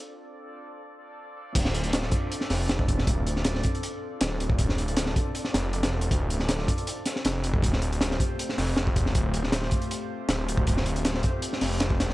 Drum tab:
CC |----------------|x---------------|----------------|----------------|
HH |----------------|x-xxx-x-x-o-x-x-|x-x-x-xxx---x-x-|x-xxx-x-x-x-xx-x|
SD |----------------|-o--oo---oo-o--o|---ooo------o---|-o--oo---oo--o--|
BD |----------------|o-----o------oo-|o-----o--------o|o-----o---------|

CC |----------------|----------------|----------------|----------------|
HH |x-x-x-xxx-x-x-x-|x-xxx-x-x-o-x-x-|x-x-x-xxx---x-x-|x-xxx-x-x-o-x-x-|
SD |---ooo----ooo---|-o--oo---oo-o--o|---ooo------o---|-o--oo---oo-o-oo|
BD |o-----o--------o|o-----o------oo-|o-----o--------o|o-----o------o--|